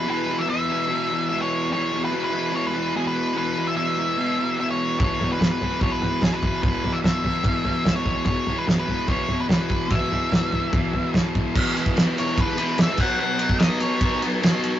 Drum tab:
CC |----------------|----------------|----------------|----------------|
RD |----------------|----------------|----------------|----------------|
SD |----------------|----------------|----------------|----o-------o---|
FT |----------------|----------------|----------------|o-o-o-o-o-o-o-o-|
BD |----------------|----------------|----------------|o-------o-----o-|

CC |----------------|----------------|----------------|x-------------x-|
RD |----------------|----------------|----------------|--x-x-x-x-x-x---|
SD |----o-------o---|----o-------o---|----o-------o---|----o-------o---|
FT |o-o-o-o-o-o-o-o-|o-o-o-o-o-o-o-o-|o-o-o-o-o-o-o-o-|----------------|
BD |o-------o-----o-|o-------o-----o-|o-------o-----o-|o--o----o-----o-|

CC |----------------|
RD |--x-x-x-x-x-x-x-|
SD |----o-------o---|
FT |----------------|
BD |---o----o-------|